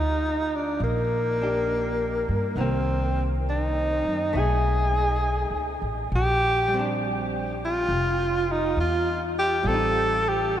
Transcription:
Already playing: D2 D#4 G4
0.56 D4
0.80 A#1 A#3
1.41 D4 G4
2.29 G2
2.56 C2 D#3 A#3 B3
2.60 C4
3.49 D#4
4.05 F#2
4.33 B1 A3 D#4
4.38 G#4
5.51 C#2
5.82 A1
6.12 A#1 G4
6.68 G3
6.74 C4
6.79 D4
7.65 F4
7.88 F1
8.52 D#4
8.77 E2 F4
9.39 G4
9.63 A1 G3
9.68 C4 A4
9.74 D#4
10.29 G4

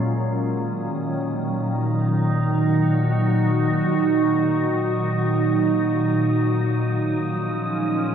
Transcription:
Already playing: A#2 F#3 A#3 C#4 A#4
0.08 D#6
0.47 D#3
1.50 D#4
2.43 F#4
7.10 F3
7.25 C#4
7.35 G#3

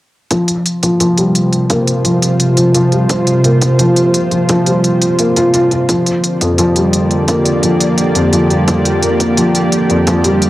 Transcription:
0.31 C3 F3 F4 C5, kick, closed hi-hat
0.48 closed hi-hat
0.66 closed hi-hat
0.83 F3, kick, closed hi-hat
1.00 F3, closed hi-hat
1.18 G3, closed hi-hat
1.35 closed hi-hat
1.53 closed hi-hat
1.70 A#3, kick, closed hi-hat
1.87 closed hi-hat
2.05 F3, closed hi-hat
2.22 closed hi-hat
2.40 closed hi-hat
2.57 F3, closed hi-hat
2.75 F3, closed hi-hat
2.92 G3, closed hi-hat
3.09 kick, closed hi-hat
3.27 closed hi-hat
3.44 A#3, closed hi-hat
3.62 kick, closed hi-hat
3.79 F3, closed hi-hat
3.96 closed hi-hat
4.14 closed hi-hat
4.31 F3, closed hi-hat
4.49 F3, kick, closed hi-hat
4.66 G3, closed hi-hat
4.84 closed hi-hat
5.02 closed hi-hat
5.19 A#3, closed hi-hat
5.36 F4, closed hi-hat
5.54 F4, closed hi-hat
5.71 F4, closed hi-hat
5.89 D3 F3 A#3 G4 D5, kick, closed hi-hat
6.06 closed hi-hat
6.24 closed hi-hat
6.41 F2, kick, closed hi-hat
6.58 F3, closed hi-hat
6.76 G3, closed hi-hat
6.93 closed hi-hat
7.11 closed hi-hat
7.28 A#3, kick, closed hi-hat
7.45 closed hi-hat
7.63 F3, closed hi-hat
7.80 closed hi-hat
7.98 closed hi-hat
8.15 F2, closed hi-hat
8.33 F3, closed hi-hat
8.50 G3, closed hi-hat
8.68 kick, closed hi-hat
8.85 closed hi-hat
9.03 A#3, closed hi-hat
9.20 kick, closed hi-hat
9.37 F3, closed hi-hat
9.55 closed hi-hat
9.72 closed hi-hat
9.90 F2, closed hi-hat
10.07 F3, kick, closed hi-hat
10.24 G3, closed hi-hat
10.42 closed hi-hat

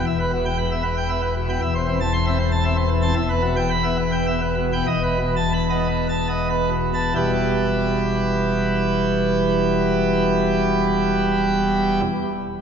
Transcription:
0.07 E1 E2 E5
0.20 B4
0.33 B2 B3
0.46 G5
0.59 B5
0.71 B3 E5
0.83 B4
0.97 G5
1.09 B3 E5
1.22 B4
1.37 B2
1.49 B3 G5
1.62 E1 E2 E5
1.75 C5
1.88 E3 C4
2.01 A5
2.13 C6
2.27 C4 E5
2.39 C5
2.52 A5
2.65 C4 E5
2.77 C5
2.89 E3
3.02 C4 A5
3.16 E1 E2 E5
3.29 B4
3.42 B2 B3
3.57 G5
3.71 B5
3.84 B3 E5
3.97 B4
4.12 G5
4.27 B3 E5
4.41 B4
4.57 B2
4.73 B3 G5
4.86 E1 E2 D#5
5.03 B4
5.19 B2 B3
5.36 A5
5.54 B5
5.70 B3 D#5
5.89 B4
6.09 A5
6.29 B3 D#5
6.50 B4
6.70 B2
6.94 B3 A5
7.15 E1 E2 B2 G3 B3 E4 G4

